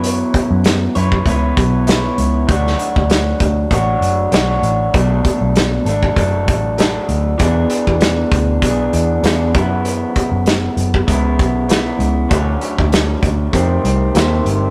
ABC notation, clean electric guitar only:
X:1
M:4/4
L:1/8
Q:"Swing 16ths" 1/4=98
K:F#m
V:1 name="Clean electric guitar"
[F,B,EBc]3 [EBc] [B,EBc]2 [B,EBc]2 | [D,F,A,DFc]4 [A,DFc]2 [A,DFc]2 | [B,,F,A,DA]3 [A,DA] [F,A,DA]2 [F,A,DA]2 | [E,B,DG]4 [E,B,DG]2 [E,B,DG] [F,,C,E,B,E]- |
[F,,C,E,B,E]4 [C,E,B,E]2 [C,E,B,E]2 | [D,F,A,C]4 [=C,_E,A,=C]2 [C,E,A,C]2 |]